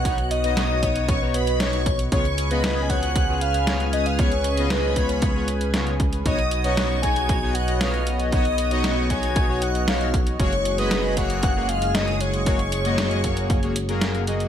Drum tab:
HH |xxxxx-xxx-xxxxxx|xxxxx-xxx-xxxxxx|xxxxx-xxx-xxxxxx|xxxxx-xxx-xxxxxx|
SD |----o-------o---|----o-------o---|----o-------o---|----o-------o---|
BD |o-----o-o-----o-|o-----o-o-------|o-----o-o-----o-|o-----o-o-------|

HH |xxxxx-xxx-xxxxxx|xxxxx-xxx-xxxxxx|xxxxxxxxxxxxxxxx|
SD |----o-------o---|----o-------o---|----o-------o---|
BD |o-----o-o-----o-|o-----o-o-------|o-----o-o-------|